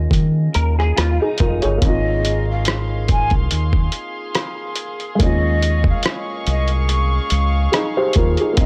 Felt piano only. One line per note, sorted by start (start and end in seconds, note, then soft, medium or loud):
0.00 1.75 G#3 medium
0.00 1.76 A#3 medium
0.00 1.79 C#4 medium
0.00 0.96 F4 medium
1.22 1.39 D#4 medium
1.22 1.39 G#4 medium
1.40 1.62 F4 medium
1.40 1.62 A#4 medium
1.62 2.03 G#4 medium
1.62 2.03 C#5 medium
1.78 5.14 A#3 medium
1.78 5.16 C4 medium
1.85 5.17 D#4 medium
1.85 5.19 F4 medium
5.15 8.52 G#3 medium
5.15 8.51 A#3 medium
5.22 8.55 C#4 medium
5.22 7.72 F4 medium
7.72 7.96 D#4 medium
7.72 7.95 G#4 medium
7.97 8.15 G4 medium
7.97 8.15 C5 medium
8.17 8.39 F4 medium
8.17 8.39 A#4 medium
8.41 8.58 D#4 medium
8.41 8.66 G#4 medium
8.53 8.66 A#3 medium
8.53 8.66 C4 medium
8.60 8.66 D#4 medium